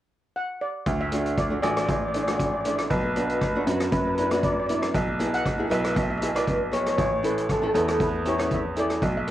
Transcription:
0.36 steel pan F#5
0.61 steel pan D5
0.86 grand piano D2, kick, closed hi-hat
1.01 steel pan E5
1.12 nylon-string guitar A3 D4 F#4, closed hi-hat
1.26 closed hi-hat
1.37 steel pan D5, kick, cross-stick, closed hi-hat
1.50 nylon-string guitar A3 D4 F#4
1.62 grand piano A1, nylon-string guitar A3 D4 F#4, steel pan D5, closed hi-hat
1.71 steel pan D5
1.76 steel pan D5, cross-stick, closed hi-hat
1.86 grand piano A1, steel pan D5, kick, closed hi-hat
1.93 steel pan D5
2.02 steel pan D5
2.08 steel pan D5
2.14 nylon-string guitar A3 D4 E4, steel pan D5, closed hi-hat
2.23 nylon-string guitar A3, steel pan D5
2.28 nylon-string guitar D4 F#4, steel pan D5, cross-stick, closed hi-hat
2.38 steel pan D5, kick, closed hi-hat
2.46 steel pan D5
2.54 steel pan D5
2.61 nylon-string guitar A3, steel pan D5, closed hi-hat
2.65 nylon-string guitar D4 E4, steel pan D5
2.76 steel pan D5, cross-stick, closed hi-hat
2.90 grand piano B1, steel pan B4, kick, closed hi-hat
2.98 steel pan B4
3.05 steel pan B4
3.13 nylon-string guitar B3 D4, steel pan B4, closed hi-hat
3.17 nylon-string guitar F#4, steel pan B4
3.28 steel pan B4, closed hi-hat
3.35 steel pan B4
3.41 steel pan B4, kick, cross-stick, closed hi-hat
3.50 steel pan B4
3.55 nylon-string guitar B3 D4 F#4
3.67 grand piano F#2, nylon-string guitar B3 D4 F#4, closed hi-hat
3.80 cross-stick, closed hi-hat
3.92 grand piano F#2, steel pan B4, kick, closed hi-hat
4.00 steel pan B4
4.07 steel pan B4
4.15 nylon-string guitar B3 D4, steel pan B4, closed hi-hat
4.19 nylon-string guitar E4, steel pan B4
4.30 nylon-string guitar B3 D4 F#4, steel pan B4, cross-stick, closed hi-hat
4.43 steel pan D5, kick, closed hi-hat
4.52 steel pan D5
4.60 steel pan D5
4.67 nylon-string guitar B3 D4 E4, steel pan D5, closed hi-hat
4.74 steel pan D5
4.82 steel pan D5, cross-stick, closed hi-hat
4.94 grand piano B1, steel pan E5, kick, closed hi-hat
5.19 nylon-string guitar B3 E4 G#4, closed hi-hat
5.34 steel pan F#5, closed hi-hat
5.46 kick, cross-stick, closed hi-hat
5.58 nylon-string guitar B3 E4 G#4
5.69 grand piano B1, nylon-string guitar B3 E4 B4, steel pan E5, closed hi-hat
5.80 steel pan E5
5.84 steel pan E5, cross-stick, closed hi-hat
5.95 grand piano B1, steel pan E5, kick, closed hi-hat
6.03 steel pan E5
6.10 steel pan E5
6.18 nylon-string guitar B3, steel pan E5
6.22 nylon-string guitar E4 G#4, steel pan E5, closed hi-hat
6.35 nylon-string guitar B3 E4 B4, steel pan D5, cross-stick, closed hi-hat
6.47 kick, closed hi-hat
6.72 nylon-string guitar B3 E4 G#4, steel pan C#5, closed hi-hat
6.81 steel pan C#5
6.86 steel pan C#5, cross-stick, closed hi-hat
6.96 grand piano A1, steel pan C#5, kick, closed hi-hat
7.05 steel pan C#5
7.12 steel pan C#5
7.23 nylon-string guitar C#4 E4 A4, steel pan B4, closed hi-hat
7.38 closed hi-hat
7.49 steel pan A4, kick, cross-stick, closed hi-hat
7.59 nylon-string guitar C#4 E4, steel pan A4
7.63 nylon-string guitar A4, steel pan A4
7.74 grand piano E2, nylon-string guitar C#4 E4 A4, steel pan A4, closed hi-hat
7.81 steel pan A4
7.88 steel pan A4, cross-stick, closed hi-hat
8.00 grand piano E2, steel pan B4, kick, closed hi-hat
8.25 nylon-string guitar C#4 E4 G4, steel pan C#5, closed hi-hat
8.38 nylon-string guitar C#4 E4 A4, cross-stick, closed hi-hat
8.51 steel pan E5, kick, closed hi-hat
8.76 nylon-string guitar C#4 E4 A4, steel pan D5, closed hi-hat
8.90 cross-stick, closed hi-hat
9.02 grand piano B1, kick, closed hi-hat
9.17 steel pan E5
9.27 nylon-string guitar B3, closed hi-hat

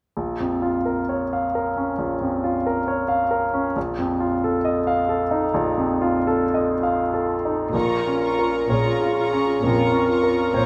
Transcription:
0.17 grand piano A#1
0.40 grand piano F2
0.62 grand piano F4
0.86 grand piano A#4
1.09 grand piano C#5
1.33 grand piano F5
1.55 grand piano A#4
1.77 grand piano C#4
1.98 grand piano A#1
2.21 grand piano F2
2.44 grand piano F4
2.66 grand piano A#4
2.88 grand piano C#5
3.08 grand piano F5
3.31 grand piano A#4
3.53 grand piano C#4
3.76 grand piano A#1
3.98 grand piano F2
4.20 grand piano F4
4.44 grand piano A4
4.65 grand piano D#5
4.87 grand piano F5
5.09 grand piano A4
5.31 grand piano D#4
5.54 grand piano A#1
5.78 grand piano F2
6.02 grand piano F4
6.27 grand piano A4
6.54 clarinet F4, grand piano D#5
6.83 grand piano F5
7.14 grand piano A4
7.45 grand piano D#4
7.73 double bass section A#1, grand piano A#1, cello section A#2, viola section F4, clarinet A#4, violin section A#5 C#6
8.07 grand piano C#4
8.22 viola section F4, violin section A#5 C#6
8.39 grand piano A#4
8.69 double bass section A#1, cello section A#2, viola section F4, clarinet G#4, grand piano C#5, violin section A#5 C#6
9.02 grand piano F4
9.17 viola section F4, violin section A#5 C#6
9.33 grand piano C#4
9.62 double bass section A#1, grand piano F2, cello section A#2, viola section F4, clarinet A#4, violin section A#5 C#6
9.94 grand piano C#4
10.09 viola section F4, violin section A#5 C#6
10.23 grand piano A#4
10.54 double bass section A#1, cello section A#2, viola section F4, clarinet C5, grand piano C#5, violin section A#5 C#6

